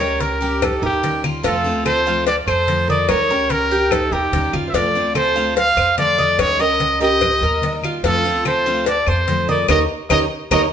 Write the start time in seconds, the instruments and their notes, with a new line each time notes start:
Already playing: upright bass D#2, nylon-string guitar A#4, trumpet C#5
0.00 steel-string acoustic guitar G3 C#4 G4, cuban tres A#4, high conga
0.10 upright bass C#2
0.20 nylon-string guitar G4, trumpet A#4, cowbell, high conga
0.41 steel-string acoustic guitar G3 C#4 G4, cuban tres G4, high conga
0.62 nylon-string guitar D#4, trumpet A4, muted steel-string acoustic guitar stroke, cowbell, high conga, low conga, claves
0.82 upright bass D#2, nylon-string guitar D#4, trumpet G4, cuban tres A#4, high conga, low conga
1.03 steel-string acoustic guitar D#3 G3 C#4 G4, cowbell, high conga
1.24 cuban tres F4, high conga, claves
1.43 upright bass F2, steel-string acoustic guitar C3 F3 A3 C4 F4, nylon-string guitar F4, cuban tres F4, trumpet A4, cowbell, high conga
1.64 steel-string acoustic guitar F3 A3 C4 F4, high conga
1.75 upright bass D2
1.85 nylon-string guitar A4, cuban tres A4, trumpet C5, cowbell, high conga, claves
2.06 steel-string acoustic guitar F3 A3 C4 F4, cuban tres F5, high conga
2.27 nylon-string guitar A4, trumpet D5, muted steel-string acoustic guitar stroke, cowbell, high conga
2.47 upright bass F2, nylon-string guitar A4, trumpet C5, cuban tres C5, high conga, claves
2.68 steel-string acoustic guitar F3 A3 C4 F4, cowbell, high conga
2.88 nylon-string guitar A#4, trumpet D5, cuban tres D#5, high conga
3.09 upright bass D#2, steel-string acoustic guitar D#3 G3 C#4 G4, nylon-string guitar A#4, trumpet C#5, cowbell, high conga, claves
3.30 steel-string acoustic guitar G3 C#4 G4, cuban tres A#4, high conga
3.40 upright bass C#2
3.49 nylon-string guitar G4, trumpet A#4, cowbell, high conga
3.71 steel-string acoustic guitar G3 C#4 G4, cuban tres G4, high conga
3.91 nylon-string guitar D#4, trumpet A4, muted steel-string acoustic guitar stroke, cowbell, high conga, low conga, claves
4.12 upright bass D#2, nylon-string guitar D#4, trumpet G4, cuban tres A#4, high conga
4.32 upright bass D#2, steel-string acoustic guitar D#3 G3 C#4 G4, cowbell, high conga
4.53 upright bass F2, cuban tres F4, high conga, claves
4.67 nylon-string guitar C5, trumpet E5
4.74 upright bass F2, steel-string acoustic guitar C3 F3 A3 C4 F4, cuban tres F4, nylon-string guitar A4, trumpet D5, cowbell, high conga
4.95 steel-string acoustic guitar F3 A3 C4 F4, high conga
5.05 upright bass D2
5.15 nylon-string guitar A4, cuban tres A4, trumpet C5, cowbell, high conga, claves
5.36 steel-string acoustic guitar F3 A3 C4 F4, cuban tres F5, high conga
5.56 nylon-string guitar C5, trumpet F5, muted steel-string acoustic guitar stroke, cowbell, high conga
5.77 upright bass F2, cuban tres C5, high conga, claves
5.98 steel-string acoustic guitar F3 A3 C4 F4, nylon-string guitar A4, trumpet D5, cowbell, high conga
6.18 cuban tres D#5, high conga
6.39 upright bass D#2, steel-string acoustic guitar D#3 G3 C#4 G4, nylon-string guitar A#4, trumpet C#5, cowbell, claves
6.59 steel-string acoustic guitar G3 C#4 G4, nylon-string guitar A#4, cuban tres A#4, trumpet D#5, high conga
6.69 upright bass C#2
6.80 cowbell, high conga
7.00 steel-string acoustic guitar G3 C#4 G4, cuban tres G4, nylon-string guitar A#4, trumpet D#5, high conga
7.21 muted steel-string acoustic guitar stroke, cowbell, high conga, low conga, claves
7.41 upright bass D#2, cuban tres A#4, high conga, low conga
7.62 steel-string acoustic guitar D#3 G3 C#4 G4, cowbell, high conga
7.83 cuban tres F4, high conga, claves
8.03 upright bass F2, steel-string acoustic guitar C3 F3 A3 C4 F4, nylon-string guitar F4, cuban tres F4, trumpet A4, cowbell, high conga
8.25 steel-string acoustic guitar F3 A3 C4 F4, high conga
8.35 upright bass D2
8.45 nylon-string guitar A4, cuban tres A4, trumpet C5, cowbell, high conga, claves
8.66 steel-string acoustic guitar F3 A3 C4 F4, cuban tres F5, high conga
8.86 nylon-string guitar A4, trumpet D5, muted steel-string acoustic guitar stroke, cowbell, high conga
9.07 upright bass F2, nylon-string guitar A4, cuban tres C5, trumpet C5, high conga, claves
9.28 steel-string acoustic guitar F3 A3 C4 F4, cowbell, high conga
9.48 nylon-string guitar A#4, trumpet D5, cuban tres D#5, high conga
9.68 upright bass D#2, steel-string acoustic guitar A#3 C#4 D#4, nylon-string guitar D#4 G4 A#4, cuban tres A#4 C#5 D#5, trumpet D#5, cowbell, high conga, claves
10.10 upright bass D#2, steel-string acoustic guitar A#3 C#4 D#4, nylon-string guitar D#4 G4 A#4, cuban tres A#4 C#5 D#5, trumpet D#5, cowbell, high conga, claves
10.51 upright bass D#2, steel-string acoustic guitar A#3 C#4 D#4, nylon-string guitar D#4 G4 A#4, cuban tres A#4 C#5 D#5, trumpet D#5, cowbell, high conga, claves